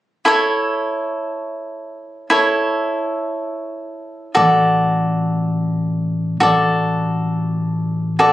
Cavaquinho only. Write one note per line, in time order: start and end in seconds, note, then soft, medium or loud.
0.25 2.26 E4 medium
0.25 2.27 A4 soft
0.25 2.28 C#5 medium
2.30 4.31 E4 medium
2.30 4.32 A4 medium
2.30 4.32 C#5 medium
4.35 6.36 F#4 medium
4.35 6.36 A4 soft
4.35 6.37 D5 medium
6.40 8.15 F#4 medium
6.40 8.16 A4 medium
6.40 8.17 D5 medium
8.19 8.33 F#4 soft
8.19 8.33 A4 soft
8.19 8.33 D5 medium